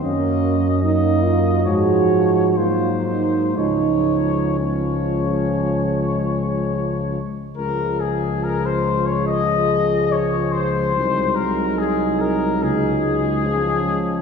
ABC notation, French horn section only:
X:1
M:4/4
L:1/8
Q:1/4=71
K:Db
V:1 name="French horn section"
D2 E F G2 F E | E2 D4- D z | A8 | E6 D2 |]